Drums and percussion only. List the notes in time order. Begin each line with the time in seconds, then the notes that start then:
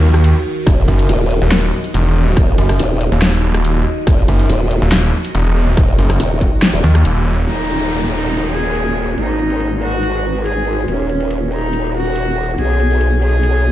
0.14 cross-stick, closed hi-hat
0.24 closed hi-hat
0.67 kick, cross-stick, closed hi-hat
0.88 closed hi-hat
0.99 closed hi-hat
1.09 closed hi-hat
1.30 closed hi-hat
1.52 snare, clap, closed hi-hat
1.84 closed hi-hat
1.94 closed hi-hat
2.37 kick, cross-stick, closed hi-hat
2.58 closed hi-hat
2.69 cross-stick, closed hi-hat
2.79 closed hi-hat
3.01 closed hi-hat
3.22 snare, clap, closed hi-hat
3.54 cross-stick, closed hi-hat
3.65 closed hi-hat
4.07 kick, cross-stick, closed hi-hat
4.28 closed hi-hat
4.39 closed hi-hat
4.50 closed hi-hat
4.71 closed hi-hat
4.92 snare, clap, closed hi-hat
5.25 closed hi-hat
5.35 closed hi-hat
5.77 kick, cross-stick, closed hi-hat
5.99 closed hi-hat
6.10 cross-stick, closed hi-hat
6.20 closed hi-hat
6.41 kick, closed hi-hat
6.62 snare, clap, closed hi-hat
6.95 cross-stick, closed hi-hat
7.05 closed hi-hat
7.47 closed hi-hat
7.69 closed hi-hat
7.80 closed hi-hat
7.90 closed hi-hat
8.11 closed hi-hat
8.33 closed hi-hat
8.65 closed hi-hat
8.75 closed hi-hat
9.18 closed hi-hat
9.39 closed hi-hat
9.50 closed hi-hat
9.60 closed hi-hat
9.82 closed hi-hat
10.03 closed hi-hat
10.35 closed hi-hat
10.46 closed hi-hat
10.88 closed hi-hat
11.09 closed hi-hat
11.20 closed hi-hat
11.31 closed hi-hat
11.52 closed hi-hat
11.73 closed hi-hat
12.06 closed hi-hat
12.16 closed hi-hat
12.58 closed hi-hat
12.80 closed hi-hat
12.91 closed hi-hat
13.01 closed hi-hat
13.22 closed hi-hat
13.43 closed hi-hat